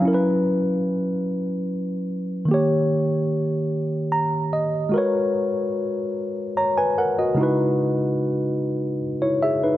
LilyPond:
\new Staff \with { instrumentName = "Tine electric piano" } { \time 6/8 \key fis \mixolydian \tempo 4. = 49 << { r2. | r2 ais''8 dis''8 | r2 <cis'' ais''>16 <b' gis''>16 <ais' fis''>16 <fis' dis''>16~ | <fis' dis''>16 r2 <e' cis''>16 <gis' e''>16 <dis' b'>16 | } \\ { <fis cis' e' ais' b'>2. | <dis ais g' cis''>2. | <gis fis' ais' b' cis''>2. | <cis gis dis' e' fis' b'>2. | } >> }